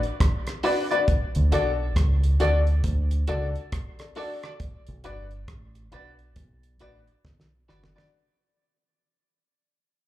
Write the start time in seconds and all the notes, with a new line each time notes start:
0.03 closed hi-hat
0.20 kick, cross-stick, closed hi-hat
0.47 cross-stick, closed hi-hat
0.63 D4 F#4 B4 D5, open hi-hat
0.91 D4 F#4 B4 D5, closed hi-hat
1.08 kick, closed hi-hat
1.35 D2, closed hi-hat
1.52 B1 D4 F#4 A4 D5, closed hi-hat
1.96 C#2, kick, cross-stick, closed hi-hat
2.24 closed hi-hat
2.40 D2 D4 F#4 A4 D5, closed hi-hat
2.67 closed hi-hat
2.84 D2, kick, closed hi-hat
3.11 closed hi-hat
3.27 C#2 D4 F#4 A4 D5, closed hi-hat
3.56 closed hi-hat
3.72 kick, cross-stick, closed hi-hat
3.99 A4 D5, cross-stick, closed hi-hat
4.15 D4 F#4 A4 D5, open hi-hat
4.43 F#4 A4 D5, cross-stick, closed hi-hat
4.60 kick, closed hi-hat
4.87 B1, closed hi-hat
5.04 G1 D4 F#4 B4 D5, closed hi-hat
5.31 closed hi-hat
5.48 A1, kick, cross-stick, closed hi-hat
5.75 closed hi-hat
5.91 B1 D4 F#4 B4 D5, closed hi-hat
6.19 closed hi-hat
6.36 B1, kick, closed hi-hat
6.63 closed hi-hat
6.79 A1 D4 F#4 B4 D5, closed hi-hat
7.07 muted clean electric guitar stroke, closed hi-hat
7.25 B1, kick, snare
7.40 snare
7.68 F#1 D4 F#4 B4 D5, snare
7.84 snare
7.95 D4 F#4 B4 D5, snare